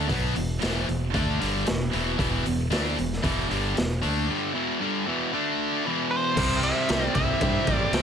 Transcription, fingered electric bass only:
0.09 B1
0.37 E1
0.63 E1
0.89 E1
1.14 D2
1.42 G1
1.69 E1
1.94 E1
2.19 E1
2.47 E1
2.71 D2
2.99 E1
3.24 E1
3.51 G1
3.79 E1
4.04 D2
6.37 C2
6.90 C2
7.16 C2
7.41 G2
7.68 A1
7.92 C#2

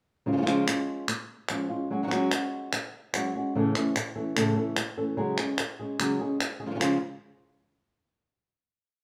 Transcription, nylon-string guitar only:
0.26 C#3 F3 G#3 C#4 F4
0.32 F3 G#3 C#4 F4
0.37 F3 G#3 C#4 F4
0.41 F3 G#3 C#4 F4
0.46 C#3 F3 G#3 C#4 F4
0.68 G#3 C#4
1.08 muted nylon-string guitar stroke
1.50 F3 G#3 C#4 F4
1.69 G#3 C#4 F4
1.91 F#3 G#3 C#4 F#4
2.03 F#3 G#3 C#4 F#4
2.07 F#3 G#3 C#4 F#4
2.12 F#3 G#3 C#4 F#4
2.32 G#3 C#4 F#4
2.73 muted nylon-string guitar stroke
3.13 F#3 G#3 C#4 F#4
3.35 G#3 C#4 F#4
3.55 A2 C#3 E3 A3 C#4 A4
3.76 E3 A3 C#4 A4
3.96 muted nylon-string guitar stroke
4.16 E3 A3 C#4 A4
4.36 A2 C#3 E3 A3 C#4 A4
4.57 E3 A3 C#4 A4
4.77 muted nylon-string guitar stroke
4.97 E3 A3 C#4 A4
5.17 C#3 F#3 G#3 C#4 G#4
5.39 G#3 C#4 G#4
5.60 muted nylon-string guitar stroke
5.80 G#3 C#4 G#4
5.99 C#3 F#3 G#3 C#4 G#4
6.21 G#3 C#4 G#4
6.40 muted nylon-string guitar stroke
6.60 G#3 C#4 G#4
6.66 F3 G#3 C#4 F4
6.70 F3 G#3 C#4 F4
6.75 F3 G#3 C#4 F4
6.80 C#3 F3 G#3 C#4 F4

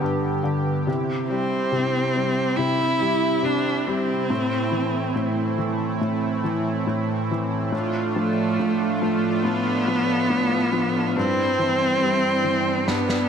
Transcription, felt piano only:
Already playing: G2 D3
0.02 G2
0.43 D3
0.87 C3
1.30 G3
1.72 C3
2.15 G3
2.58 C3
3.00 G3
3.43 C3
3.87 G3
4.30 A2
4.71 E3
5.15 A2
5.58 E3
6.01 A2
6.44 E3
6.87 A2
7.31 E3
7.72 A2
8.16 F3
8.59 A2
9.02 F3
9.45 A2
9.88 F3
10.30 A2
10.72 F3
11.16 G2
11.59 E3
12.02 G3
12.44 E3
12.87 G2

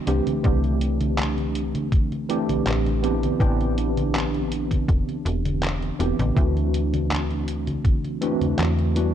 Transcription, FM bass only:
0.07 C2
0.44 C2
2.49 A1
2.66 A1
3.40 A1
4.88 E1
5.25 E1
6.00 E1
6.19 A1
6.37 D2
8.41 E2
8.59 E2

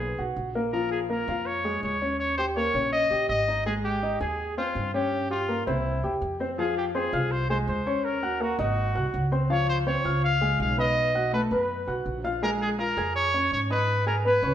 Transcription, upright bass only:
Already playing: B1
0.19 B1
0.36 A#1
1.28 F2
1.83 D#2
2.74 A#1
3.11 A#1
3.29 G#1
4.20 D#2
4.75 G2
5.67 C2
6.03 E2
6.22 F2
7.13 C2
7.68 D#2
8.59 G#1
8.96 C2
9.14 C#2
10.05 C#2
10.60 B1
11.51 F#2
11.87 B1
12.06 A#1
12.97 F2
13.51 G#2
14.42 C#2

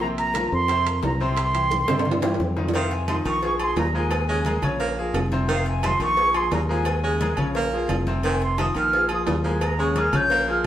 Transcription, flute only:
0.01 A#5
0.19 A#5
0.53 C6
1.05 A#5
1.22 C6
2.75 F5
2.92 G#5
3.09 C6
3.27 C#6
3.62 C6
3.78 A#5
3.97 G#5
5.51 F5
5.68 G#5
5.85 C6
6.02 C#6
6.36 C6
6.54 A#5
6.72 G#5
8.25 G#5
8.43 C6
8.60 D#6
8.77 F6
9.14 D#6
9.64 A#5
9.80 C#6
9.98 F6
10.16 G6
10.51 F6

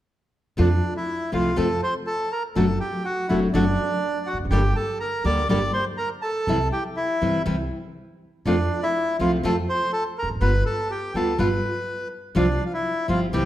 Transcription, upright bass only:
0.59 F2
1.33 C2
1.58 F2
2.56 F#1
3.30 F#1
3.54 F#1
4.33 E1
4.39 F1
4.45 F#1
4.51 G1
5.24 D2
5.49 G1
6.47 C2
7.22 G1
7.46 C2
8.46 F2
9.19 C2
9.44 F2
10.23 E1
10.30 F1
10.35 F#1
10.41 G1
11.14 D2
11.39 G1
12.35 C2
13.09 G1
13.33 C2

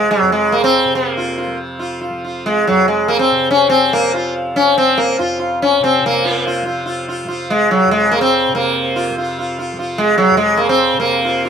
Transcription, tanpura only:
Already playing: F2 C3 F3
0.22 F2
0.85 C3
1.47 F3
2.10 F3
2.70 F2
3.32 C3
3.95 F3
4.56 F3
5.19 F2
5.80 C3
6.01 C3
6.62 F3
7.24 F3
7.86 F2
8.49 C3
9.10 F3
9.73 F3
10.31 F2
10.93 C3

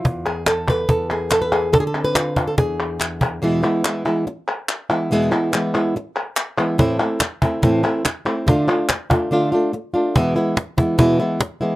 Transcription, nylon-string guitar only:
Already playing: F4
0.05 E2
0.26 G#4
0.47 A4
0.70 B4
0.89 E2 A4
1.11 G#4
1.32 A4
1.42 B4
1.52 G#4
1.73 D3 A4
1.80 G#4
1.87 A4
1.95 C4
2.04 B4
2.16 F4
2.37 F4
2.47 A4
2.58 E2 G#4
3.42 E2 B2 E3 G#3 B3 E4
3.63 E3 G#3 B3 E4
3.84 E3 G#3 B3 E4
4.05 E3 G#3 B3 E4
4.27 muted nylon-string guitar stroke
4.90 E3 G#3 B3 E4
5.11 E2 B2 E3 G#3 B3 E4
5.31 E3 G#3 B3 E4
5.53 E3 G#3 B3 E4
5.74 E3 G#3 B3 E4
5.96 muted nylon-string guitar stroke
6.58 E3 G#3 B3 E4
6.78 A2 E3 A3 C4 E4
6.99 A3 C4 E4
7.21 muted nylon-string guitar stroke
7.42 A3 C4 E4
7.62 A2 E3 A3 C4 E4
7.83 A3 C4 E4
8.05 muted nylon-string guitar stroke
8.25 A3 C4 E4
8.47 D3 A3 D4 F4
8.68 A3 D4 F4
8.90 muted nylon-string guitar stroke
9.10 A3 D4 F4
9.31 D3 A3 D4 F4
9.52 A3 D4 F4
9.73 muted nylon-string guitar stroke
9.94 A3 D4 F4
10.15 E2 B2 E3 G#3 B3 E4
10.36 E3 G#3 B3 E4
10.57 muted nylon-string guitar stroke
10.78 E3 G#3 B3 E4
10.98 E2 B2 E3 G#3 B3 E4
11.20 E3 G#3 B3 E4
11.40 muted nylon-string guitar stroke
11.61 E3 G#3 B3 E4

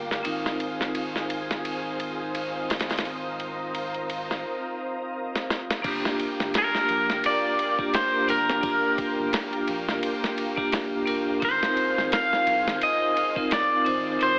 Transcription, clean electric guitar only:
6.58 A#4
7.26 D5
7.95 C5
8.30 A#4
11.45 C5
12.13 F5
12.83 D#5
13.53 D5
14.23 C5

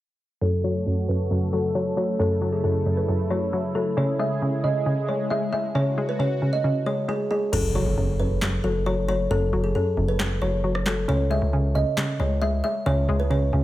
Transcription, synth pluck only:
0.41 F#2
0.64 F#3
0.87 F#2
1.09 F#2
1.31 F#2
1.53 F#3
1.75 F#3
1.97 F#3
2.19 F#2
2.42 F#3
2.64 F#2
2.86 F#2
3.08 F#2
3.31 F#3
3.53 F#3
3.75 F#3
3.97 C#3
4.19 G#3
4.42 C#3
4.64 C#3
4.86 C#3
5.09 G#3
5.31 G#3
5.53 G#3
5.75 C#3
5.98 G#3
6.19 C#3
6.42 C#3
6.64 C#3
6.86 G#3
7.08 G#3
7.31 G#3
7.53 F#2
7.75 F#3
7.98 F#2
8.20 F#2
8.42 F#2
8.64 F#3
8.86 F#3
9.08 F#3
9.31 F#2
9.53 F#3
9.75 F#2
9.97 F#2
10.20 F#2
10.42 F#3
10.64 F#3
10.86 F#3
11.08 C#3
11.30 G#3
11.53 C#3
11.75 C#3
11.97 C#3
12.20 G#3
12.42 G#3
12.64 G#3
12.86 C#3
13.09 G#3
13.30 C#3
13.53 C#3

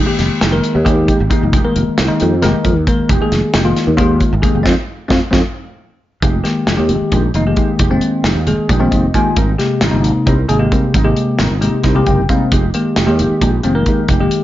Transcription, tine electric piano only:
0.06 D#3 G#3 A#3 G4
0.51 D#3 G#3 A#3 A#4
0.85 D#3 G#3 A#3 G4
1.30 D#3 G#3 A#3 D#4
1.64 D#3 G#3 A#3 A#4
2.08 D#3 G#3 A#3 D#4
2.42 D#3 G#3 A#3 A#4
2.88 D#3 G#3 A#3 A#4
3.21 D#3 G#3 A#3 G#4
3.64 D#3 G#3 A#3 F4
3.97 D#3 G#3 A#3 F4
4.42 D#3 G#3 A#3 G#4
4.63 F3 G#3 C4
5.08 F3 G#3 C4
5.31 F3 G#3 C4
6.44 D#3 G#3 A#3 G4
6.77 D#3 G#3 A#3 G4
7.35 D#3 G#3 A#3 D#4
7.46 D#3 G#3 A#3 G4
7.90 D#3 G#3 A#3 C4
8.47 D#3 G#3 A#3 G#4
8.79 D#3 G#3 A#3 C4
8.91 D#5
9.15 D#3 G#3 A#3 F4 G#5
9.58 C3 G#3 A#3 G4
9.91 C3 G#3 A#3 D#4
10.48 C3 G#3 A#3 G#4
10.59 C3 G#3 A#3 G4
11.04 C3 G#3 A#3 G4
11.61 C3 G#3 A#3 G4
11.94 C3 G#3 A#3 G4
12.07 G5
12.30 C3 G#3 A#3 C4 F5
12.74 D#3 G#3 A#3 G4
13.06 D#3 G#3 A#3 G4
13.64 D#3 G#3 A#3 C4
13.75 D#3 G#3 A#3 A#4
14.20 D#3 G#3 A#3 G4

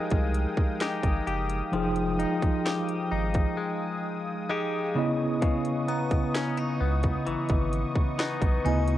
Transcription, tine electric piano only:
Already playing: F3 D#4 G4 A#4
1.72 F3 D#4 G#4 G5
4.95 C#3 B3 E4 D#5
8.65 C#3 B3 E4 D#5

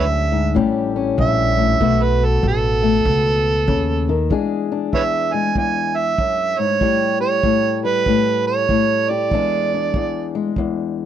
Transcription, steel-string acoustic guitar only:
Already playing: F#2 G#3 D4 G#4
0.32 G#2
0.55 A2 G3 C#4 G4
0.96 C#4
1.18 G2
1.57 A2
1.81 B2 A3 B3 F#4
2.20 B3
2.43 B2
2.83 A3
3.06 B2
3.68 C#3
4.09 D#3
4.30 E2 G#3 D4 G#4
4.72 D4
4.93 E2
5.34 G#3
5.57 E2
6.19 F#2
6.59 G#2
6.81 A2 G3 G4
7.21 G4
7.44 A2
7.85 G3
8.07 A2
8.70 A2
9.10 G4
9.32 E2 G#3 D4 G#4
9.74 D4
9.96 E2
10.35 G#3
10.58 E2

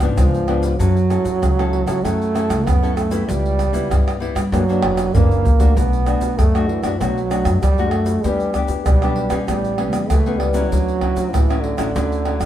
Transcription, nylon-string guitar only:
Already playing: C#3
0.01 F3 B3 D4
0.18 G#2
0.47 F3 B3 D4
0.80 F#3 C#4 E4 A4
1.10 C#4 E4 A4
1.43 C#3
1.59 C#4 E4 A4
1.87 C#4 E4 A4
2.04 F#3 C#4 E4 A4
2.35 C#4 E4 A4
2.67 C#3
2.82 C#4 E4 A4
3.11 G3 B3 E4
3.28 C#3
3.73 G3 B3 E4
3.90 C#3
4.20 G3 B3 E4
4.52 F#2 E3 A#3 D4
4.69 E3 A#3 D4
5.15 C#3 E3 A#3 D4
5.60 A3 D4 F#4
5.76 B2
6.07 A3 D4 F#4
6.39 F#2
6.55 A3 D4 F#4
6.83 A3 D4 F#4
7.01 B2 A3 D4 F#4
7.30 A3 D4 F#4
7.79 A3 D4 F#4
8.25 E3 B3 D4 G4
8.55 B3 D4 G4
8.87 B2
9.03 B3 D4 G4
9.30 G3 B3 C#4
9.48 A2
9.78 G3 B3 C#4
10.10 E3
10.26 G3 B3 C#4
10.54 F#3 C#4 E4
10.72 D3
11.02 F#3 C#4 E4
11.34 A2
11.50 F#3 C#4 E4
11.77 F#3 C#4 E4
11.95 D3 F#3 C#4 E4
12.25 F#3 C#4 E4

